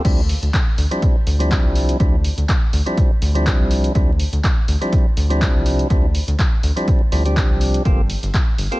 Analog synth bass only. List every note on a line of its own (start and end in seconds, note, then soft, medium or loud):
0.05 0.34 D2 loud
0.43 0.49 D2 medium
0.78 0.86 D2 loud
1.27 1.56 D2 loud
1.64 1.93 C2 medium
2.00 2.29 D2 loud
2.38 2.44 D2 medium
2.73 2.81 D2 loud
3.22 3.51 D2 loud
3.60 3.88 C2 medium
3.95 4.25 D2 loud
4.33 4.40 D2 medium
4.68 4.76 D2 loud
5.17 5.47 D2 loud
5.55 5.83 C2 medium
5.90 6.20 D2 loud
6.28 6.35 D2 loud
6.63 6.72 D2 loud
7.12 7.42 D2 loud
7.50 7.79 C2 medium
7.85 8.15 G1 loud
8.23 8.30 G1 loud
8.58 8.67 G1 loud